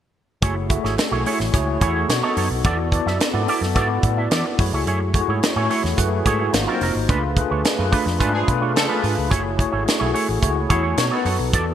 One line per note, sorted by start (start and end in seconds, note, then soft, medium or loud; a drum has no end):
0.42 0.76 F#1 medium
0.42 0.55 A3 medium
0.42 0.67 A3 medium
0.42 0.55 E4 medium
0.42 0.68 E4 medium
0.42 0.67 F#4 medium
0.42 0.55 G#4 medium
0.42 0.68 G#4 medium
0.42 0.54 C#5 medium
0.42 0.68 C#5 medium
0.42 kick loud
0.42 closed hi-hat medium
0.56 muted clean electric guitar stroke soft
0.69 1.07 A3 medium
0.69 1.07 E4 medium
0.69 1.08 F#4 medium
0.69 1.08 G#4 medium
0.69 1.08 E5 medium
0.69 muted clean electric guitar stroke soft
0.69 kick medium
0.69 closed hi-hat medium
0.83 0.96 G#1 medium
0.83 0.95 A3 soft
0.83 0.95 E4 soft
0.83 0.94 G#4 medium
0.83 0.94 C#5 medium
0.83 snare soft
0.97 muted clean electric guitar stroke soft
0.97 snare loud
0.97 closed hi-hat medium
1.11 1.23 B1 medium
1.11 1.49 A3 medium
1.11 1.23 A3 medium
1.11 1.49 E4 medium
1.11 1.22 E4 medium
1.11 1.49 F#4 medium
1.11 1.22 G#4 medium
1.11 1.50 G#4 medium
1.11 1.22 C#5 medium
1.11 1.50 C#5 medium
1.26 1.39 A3 medium
1.26 1.39 E4 medium
1.26 1.39 G#4 medium
1.26 1.39 C#5 medium
1.26 open hi-hat medium
1.40 1.51 A1 medium
1.40 muted clean electric guitar stroke soft
1.40 snare soft
1.53 1.76 C#2 medium
1.53 1.78 A3 medium
1.53 1.78 E4 medium
1.53 1.78 F#4 medium
1.53 1.79 G#4 medium
1.53 1.79 C#5 medium
1.53 muted clean electric guitar stroke soft
1.53 kick medium
1.53 closed hi-hat medium
1.67 muted clean electric guitar stroke soft
1.81 2.04 E2 medium
1.81 2.09 A3 medium
1.81 1.94 A3 medium
1.81 2.09 E4 medium
1.81 1.95 E4 medium
1.81 2.08 F#4 medium
1.81 2.09 G#4 medium
1.81 1.94 G#4 medium
1.81 2.08 C#5 medium
1.81 1.94 C#5 medium
1.81 kick medium
1.81 closed hi-hat medium
1.95 2.06 A3 soft
1.95 2.06 E4 soft
1.95 2.06 G#4 soft
1.95 2.05 C#5 medium
2.08 2.20 B2 medium
2.08 2.21 B3 medium
2.08 2.21 D#4 medium
2.08 2.21 F#4 medium
2.08 2.22 A4 medium
2.08 2.22 C#5 medium
2.08 muted clean electric guitar stroke soft
2.08 snare loud
2.08 closed hi-hat medium
2.23 2.60 B3 medium
2.23 2.36 B3 medium
2.23 2.61 D#4 medium
2.23 2.36 D#4 medium
2.23 2.61 F#4 medium
2.23 2.36 A4 medium
2.23 2.61 A4 medium
2.23 2.36 C#5 medium
2.23 2.61 D#5 medium
2.37 2.48 F#2 medium
2.37 2.47 B3 medium
2.37 2.47 D#4 medium
2.37 2.47 A4 medium
2.37 2.48 C#5 medium
2.37 open hi-hat medium
2.50 2.62 B1 medium
2.64 2.98 E2 medium
2.64 2.78 B3 medium
2.64 2.90 B3 medium
2.64 2.78 E4 medium
2.64 2.90 E4 medium
2.64 2.90 F#4 medium
2.64 2.78 A4 medium
2.64 2.90 A4 medium
2.64 2.90 D5 medium
2.64 2.78 D5 medium
2.64 kick loud
2.64 closed hi-hat medium
2.79 muted clean electric guitar stroke soft
2.91 3.29 B3 medium
2.91 3.30 E4 medium
2.91 3.30 F#4 medium
2.91 3.30 A4 medium
2.91 3.30 D5 medium
2.91 muted clean electric guitar stroke soft
2.91 kick medium
2.91 closed hi-hat medium
3.06 3.17 F#2 medium
3.06 3.17 B3 soft
3.06 3.17 E4 medium
3.06 3.17 A4 medium
3.06 3.17 E5 medium
3.06 snare soft
3.20 muted clean electric guitar stroke soft
3.20 snare loud
3.20 closed hi-hat medium
3.33 3.45 G#2 medium
3.33 3.71 B3 medium
3.33 3.71 E4 medium
3.33 3.71 F#4 medium
3.33 3.72 A4 medium
3.33 3.72 D5 medium
3.33 muted clean electric guitar stroke soft
3.48 3.61 B3 medium
3.48 3.61 E4 medium
3.48 3.61 A4 medium
3.48 3.61 D5 medium
3.48 open hi-hat medium
3.61 3.76 F#2 medium
3.61 muted clean electric guitar stroke soft
3.61 snare soft
3.75 3.98 G#2 medium
3.75 4.00 B3 medium
3.75 3.89 B3 medium
3.75 4.00 E4 medium
3.75 3.89 E4 medium
3.75 4.00 F#4 medium
3.75 4.01 A4 medium
3.75 3.89 A4 medium
3.75 4.01 D5 medium
3.75 3.88 D5 medium
3.75 kick medium
3.75 closed hi-hat medium
3.89 muted clean electric guitar stroke soft
4.03 4.26 A2 medium
4.03 4.17 F#5 medium
4.03 muted clean electric guitar stroke soft
4.03 kick medium
4.03 closed hi-hat medium
4.17 4.28 B3 soft
4.17 4.28 E4 medium
4.17 4.28 A4 soft
4.17 4.30 E5 medium
4.17 4.28 E5 medium
4.31 4.43 E3 medium
4.31 4.45 B3 medium
4.31 4.45 E4 medium
4.31 4.45 A4 medium
4.31 4.44 D5 medium
4.31 4.45 D5 medium
4.31 snare loud
4.31 closed hi-hat medium
4.46 4.72 B4 medium
4.46 muted clean electric guitar stroke medium
4.59 4.70 F#2 medium
4.59 5.09 A3 medium
4.59 5.09 E4 medium
4.59 5.09 F#4 medium
4.59 5.09 G#4 medium
4.59 5.09 C#5 medium
4.59 muted clean electric guitar stroke soft
4.59 kick medium
4.59 open hi-hat medium
4.72 4.84 C#2 medium
4.72 4.84 A3 medium
4.72 4.84 E4 medium
4.72 4.84 G#4 medium
4.72 4.83 C#5 medium
4.86 5.20 F#2 loud
4.86 5.00 A3 medium
4.86 5.00 E4 medium
4.86 5.00 G#4 medium
4.86 4.99 C#5 medium
4.86 closed hi-hat medium
5.00 muted clean electric guitar stroke soft
5.14 5.52 A3 medium
5.14 5.52 E4 medium
5.14 5.52 F#4 medium
5.14 5.52 G#4 medium
5.14 5.52 C#5 medium
5.14 muted clean electric guitar stroke soft
5.14 kick medium
5.14 closed hi-hat medium
5.28 5.40 G#2 medium
5.28 5.39 A3 soft
5.28 5.39 E4 soft
5.28 5.39 G#4 medium
5.28 5.39 C#5 medium
5.43 muted clean electric guitar stroke soft
5.43 snare loud
5.43 closed hi-hat medium
5.56 5.67 A2 medium
5.56 5.93 A3 medium
5.56 5.67 A3 medium
5.56 5.94 E4 medium
5.56 5.67 E4 medium
5.56 5.94 F#4 medium
5.56 5.67 G#4 medium
5.56 5.94 G#4 medium
5.56 5.66 C#5 medium
5.56 5.94 C#5 medium
5.70 5.83 A3 medium
5.70 5.83 E4 medium
5.70 5.83 G#4 medium
5.70 5.83 C#5 medium
5.70 open hi-hat medium
5.84 5.95 E2 medium
5.84 muted clean electric guitar stroke soft
5.84 snare soft
5.97 6.20 F#2 medium
5.97 6.22 A3 medium
5.97 6.23 E4 medium
5.97 6.23 F#4 medium
5.97 6.23 G#4 medium
5.97 6.23 B4 medium
5.97 muted clean electric guitar stroke soft
5.97 kick medium
5.97 closed hi-hat medium
6.12 muted clean electric guitar stroke soft
6.25 6.48 G#2 medium
6.25 6.53 A3 medium
6.25 6.39 A3 medium
6.25 6.53 E4 medium
6.25 6.39 E4 medium
6.25 6.52 F#4 medium
6.25 6.54 G#4 medium
6.25 6.39 G#4 medium
6.25 6.54 C#5 medium
6.25 6.38 C#5 medium
6.25 kick medium
6.25 closed hi-hat medium
6.39 6.51 A3 soft
6.39 6.50 E4 medium
6.39 6.50 G#4 medium
6.39 6.50 C#5 medium
6.52 6.65 G#1 loud
6.52 6.65 A#3 medium
6.52 6.65 D#4 medium
6.52 6.66 F4 medium
6.52 6.66 F#4 medium
6.52 6.66 C5 medium
6.52 muted clean electric guitar stroke soft
6.52 snare loud
6.52 closed hi-hat medium
6.67 6.81 F#3 medium
6.67 7.05 A#3 medium
6.67 6.81 C4 medium
6.67 7.05 D#4 medium
6.67 7.05 F4 medium
6.67 6.81 F4 medium
6.67 7.05 F#4 medium
6.67 6.81 A#4 medium
6.67 7.05 C5 medium
6.81 6.93 F1 medium
6.81 6.92 F#3 medium
6.81 6.92 C4 medium
6.81 6.92 F4 medium
6.81 6.92 A#4 medium
6.81 open hi-hat medium
6.95 7.06 G#1 medium
6.95 muted clean electric guitar stroke medium
7.09 7.43 C#2 medium
7.09 7.34 A3 medium
7.09 7.22 A3 medium
7.09 7.34 D4 medium
7.09 7.22 D4 medium
7.09 7.34 F4 medium
7.09 7.23 F4 medium
7.09 7.34 G#4 medium
7.09 7.34 B4 medium
7.09 7.22 B4 medium
7.09 kick loud
7.09 closed hi-hat medium
7.23 muted clean electric guitar stroke soft
7.37 7.74 A3 medium
7.37 7.74 D4 medium
7.37 7.74 F4 medium
7.37 7.74 G#4 medium
7.37 7.75 B4 medium
7.37 muted clean electric guitar stroke soft
7.37 kick medium
7.37 closed hi-hat medium
7.50 7.62 D2 medium
7.50 7.61 A3 soft
7.50 7.61 D4 soft
7.50 7.61 F4 medium
7.50 7.61 C#5 medium
7.64 muted clean electric guitar stroke soft
7.64 snare loud
7.64 closed hi-hat medium
7.78 7.90 F#2 medium
7.78 8.16 A3 medium
7.78 8.16 D4 medium
7.78 8.16 F4 medium
7.78 8.16 G#4 medium
7.78 8.17 B4 medium
7.78 muted clean electric guitar stroke medium
7.91 8.05 A3 medium
7.91 8.05 D4 medium
7.91 8.05 F4 medium
7.91 8.05 B4 medium
7.91 kick medium
7.91 open hi-hat medium
8.06 8.17 F2 medium
8.06 muted clean electric guitar stroke soft
8.06 snare soft
8.19 8.43 G#2 medium
8.19 8.33 A3 medium
8.19 8.45 A3 medium
8.19 8.33 D4 medium
8.19 8.45 D4 medium
8.19 8.33 F4 medium
8.19 8.45 F4 medium
8.19 8.46 G#4 medium
8.19 8.32 B4 medium
8.19 8.46 B4 medium
8.19 kick medium
8.19 closed hi-hat medium
8.33 8.46 F3 medium
8.33 8.46 D4 medium
8.33 8.46 G#4 medium
8.33 muted clean electric guitar stroke soft
8.47 8.76 B2 medium
8.47 8.85 A3 medium
8.47 8.85 D4 medium
8.47 8.85 F4 medium
8.47 8.85 G#4 medium
8.47 8.86 B4 medium
8.47 muted clean electric guitar stroke soft
8.47 kick medium
8.47 closed hi-hat medium
8.61 8.72 A3 soft
8.61 8.72 D4 soft
8.61 8.72 F4 medium
8.61 8.72 C#5 medium
8.75 8.87 C#3 medium
8.75 8.93 F3 medium
8.75 8.93 D4 medium
8.75 8.93 A4 medium
8.75 snare loud
8.75 closed hi-hat medium
8.88 9.00 A3 medium
8.88 9.27 A3 medium
8.88 9.01 D4 medium
8.88 9.27 D4 medium
8.88 9.01 F4 medium
8.88 9.27 F4 medium
8.88 9.27 G#4 medium
8.88 9.01 B4 medium
8.88 9.28 B4 medium
9.01 9.15 G#2 medium
9.01 9.13 A3 medium
9.01 9.13 D4 medium
9.01 9.13 F4 medium
9.01 9.13 B4 medium
9.01 open hi-hat medium
9.16 9.29 C#2 medium
9.16 muted clean electric guitar stroke soft
9.30 9.65 F#1 medium
9.30 9.44 A3 medium
9.30 9.56 A3 medium
9.30 9.43 E4 medium
9.30 9.56 E4 medium
9.30 9.56 F#4 medium
9.30 9.43 G#4 medium
9.30 9.56 G#4 medium
9.30 9.42 C#5 medium
9.30 9.56 C#5 medium
9.30 kick loud
9.30 closed hi-hat medium
9.44 muted clean electric guitar stroke soft
9.57 9.96 A3 medium
9.57 9.96 E4 medium
9.57 9.97 F#4 medium
9.57 9.97 G#4 medium
9.57 9.97 C#5 medium
9.57 muted clean electric guitar stroke soft
9.57 kick medium
9.57 closed hi-hat medium
9.72 9.84 G#1 medium
9.72 9.83 A3 soft
9.72 9.83 E4 medium
9.72 9.83 G#4 medium
9.72 9.83 C#5 medium
9.85 muted clean electric guitar stroke soft
9.85 snare medium
9.85 closed hi-hat medium
9.99 10.12 B1 medium
9.99 10.11 A3 soft
9.99 10.38 A3 medium
9.99 10.11 E4 medium
9.99 10.38 E4 medium
9.99 10.38 F#4 medium
9.99 10.11 G#4 medium
9.99 10.39 G#4 medium
9.99 10.10 C#5 medium
9.99 10.39 C#5 medium
10.14 10.27 A3 medium
10.14 10.27 E4 medium
10.14 10.28 G#4 medium
10.14 10.27 C#5 medium
10.14 open hi-hat medium
10.28 10.40 A1 medium
10.28 muted clean electric guitar stroke soft
10.42 10.65 C#2 medium
10.42 10.67 A3 medium
10.42 10.68 E4 medium
10.42 10.68 F#4 medium
10.42 10.68 G#4 medium
10.42 10.68 C#5 medium
10.42 muted clean electric guitar stroke soft
10.42 kick medium
10.42 closed hi-hat medium
10.56 muted clean electric guitar stroke soft
10.69 10.93 E2 medium
10.69 10.83 A3 medium
10.69 10.98 A3 medium
10.69 10.83 E4 medium
10.69 10.98 E4 medium
10.69 10.98 F#4 medium
10.69 10.82 G#4 medium
10.69 10.99 G#4 medium
10.69 10.82 C#5 medium
10.69 10.98 C#5 medium
10.69 kick medium
10.69 closed hi-hat medium
10.83 10.94 A3 soft
10.83 10.94 E4 soft
10.83 10.94 G#4 soft
10.83 10.94 C#5 medium
10.97 11.09 B2 medium
10.97 11.11 B3 medium
10.97 11.11 D#4 medium
10.97 11.11 F#4 medium
10.97 11.11 A4 medium
10.97 11.11 C#5 medium
10.97 muted clean electric guitar stroke soft
10.97 snare medium
10.97 closed hi-hat medium
11.11 11.24 B3 medium
11.11 11.50 B3 medium
11.11 11.24 D#4 medium
11.11 11.50 D#4 medium
11.11 11.50 F#4 medium
11.11 11.25 A4 medium
11.11 11.50 A4 medium
11.11 11.50 B4 medium
11.11 11.24 C#5 medium
11.25 11.37 F#2 medium
11.25 11.36 B3 medium
11.25 11.36 D#4 medium
11.25 11.36 A4 medium
11.25 11.36 C#5 medium
11.25 open hi-hat medium
11.39 11.51 B1 medium
11.39 muted clean electric guitar stroke soft
11.53 11.74 E2 medium
11.53 11.66 B3 medium
11.53 11.74 B3 medium
11.53 11.67 E4 medium
11.53 11.74 E4 medium
11.53 11.74 F#4 medium
11.53 11.66 A4 medium
11.53 11.74 A4 medium
11.53 11.66 D5 medium
11.53 11.74 D5 medium
11.53 kick loud
11.53 closed hi-hat medium
11.67 muted clean electric guitar stroke soft